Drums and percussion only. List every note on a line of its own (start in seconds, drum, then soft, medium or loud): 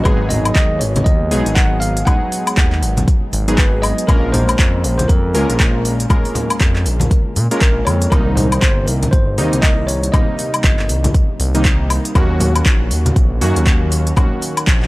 0.05 kick loud
0.05 closed hi-hat medium
0.05 low conga medium
0.05 high woodblock medium
0.30 open hi-hat loud
0.30 low conga medium
0.45 closed hi-hat medium
0.45 high woodblock medium
0.56 kick loud
0.56 clap loud
0.56 closed hi-hat medium
0.81 open hi-hat loud
0.96 closed hi-hat medium
0.96 high conga loud
0.96 low conga medium
1.06 kick loud
1.06 closed hi-hat soft
1.31 open hi-hat loud
1.46 closed hi-hat medium
1.56 kick loud
1.56 clap loud
1.56 closed hi-hat soft
1.82 open hi-hat loud
1.97 closed hi-hat medium
2.06 kick loud
2.06 closed hi-hat medium
2.06 low conga medium
2.06 high woodblock medium
2.32 open hi-hat loud
2.47 closed hi-hat medium
2.47 high woodblock medium
2.57 kick loud
2.57 clap loud
2.57 closed hi-hat medium
2.72 clap soft
2.83 open hi-hat loud
2.97 closed hi-hat medium
2.97 high conga medium
2.97 low conga medium
3.08 kick loud
3.08 closed hi-hat medium
3.33 open hi-hat loud
3.48 closed hi-hat medium
3.58 kick loud
3.58 clap loud
3.58 closed hi-hat medium
3.83 open hi-hat loud
3.83 high woodblock medium
3.98 closed hi-hat medium
4.08 kick loud
4.08 closed hi-hat medium
4.08 low conga medium
4.08 high woodblock medium
4.34 open hi-hat loud
4.34 low conga medium
4.49 closed hi-hat medium
4.49 high woodblock medium
4.59 kick loud
4.59 clap loud
4.59 closed hi-hat medium
4.84 open hi-hat loud
4.99 closed hi-hat medium
4.99 high conga medium
4.99 low conga medium
5.09 kick loud
5.09 closed hi-hat medium
5.35 open hi-hat loud
5.50 closed hi-hat medium
5.60 kick loud
5.60 clap loud
5.60 closed hi-hat medium
5.85 open hi-hat loud
6.00 closed hi-hat medium
6.10 kick loud
6.10 closed hi-hat medium
6.10 low conga medium
6.10 high woodblock medium
6.25 open hi-hat medium
6.35 open hi-hat loud
6.35 low conga medium
6.50 closed hi-hat medium
6.50 high woodblock medium
6.61 kick loud
6.61 clap loud
6.61 closed hi-hat medium
6.76 clap soft
6.86 open hi-hat loud
7.00 closed hi-hat medium
7.00 high conga loud
7.00 low conga medium
7.11 kick loud
7.11 closed hi-hat medium
7.36 open hi-hat loud
7.51 closed hi-hat medium
7.61 kick loud
7.61 clap loud
7.61 closed hi-hat medium
7.86 open hi-hat loud
7.86 high conga medium
7.86 high woodblock medium
8.02 closed hi-hat medium
8.12 kick loud
8.12 closed hi-hat medium
8.12 low conga medium
8.12 high woodblock medium
8.37 open hi-hat loud
8.37 low conga medium
8.52 closed hi-hat medium
8.52 high woodblock medium
8.62 kick loud
8.62 clap loud
8.62 closed hi-hat medium
8.88 open hi-hat loud
9.03 closed hi-hat medium
9.03 high conga medium
9.03 low conga medium
9.13 kick loud
9.13 closed hi-hat medium
9.38 open hi-hat loud
9.53 closed hi-hat medium
9.63 kick loud
9.63 clap loud
9.63 closed hi-hat medium
9.88 open hi-hat loud
10.03 closed hi-hat medium
10.14 kick loud
10.14 closed hi-hat medium
10.14 low conga medium
10.14 high woodblock medium
10.39 open hi-hat loud
10.54 closed hi-hat medium
10.54 high woodblock medium
10.64 kick loud
10.64 clap loud
10.64 closed hi-hat medium
10.79 clap soft
10.89 open hi-hat loud
11.04 closed hi-hat medium
11.04 high conga medium
11.04 low conga medium
11.14 kick loud
11.14 closed hi-hat medium
11.40 open hi-hat loud
11.55 closed hi-hat medium
11.65 kick loud
11.65 clap loud
11.65 closed hi-hat medium
11.90 open hi-hat loud
11.90 high woodblock medium
12.05 closed hi-hat medium
12.15 kick loud
12.15 closed hi-hat medium
12.15 low conga medium
12.15 high woodblock medium
12.40 open hi-hat loud
12.40 low conga medium
12.56 closed hi-hat medium
12.56 high woodblock medium
12.66 kick loud
12.66 clap loud
12.66 closed hi-hat soft
12.91 open hi-hat loud
13.06 closed hi-hat medium
13.06 high conga loud
13.06 low conga medium
13.16 kick loud
13.16 closed hi-hat medium
13.41 open hi-hat loud
13.56 closed hi-hat medium
13.67 kick loud
13.67 clap loud
13.67 closed hi-hat medium
13.92 open hi-hat loud
14.07 closed hi-hat medium
14.16 kick loud
14.16 closed hi-hat medium
14.16 low conga medium
14.16 high woodblock medium
14.42 open hi-hat loud
14.57 closed hi-hat medium
14.57 high woodblock medium
14.67 kick loud
14.67 clap loud
14.67 closed hi-hat soft
14.83 clap soft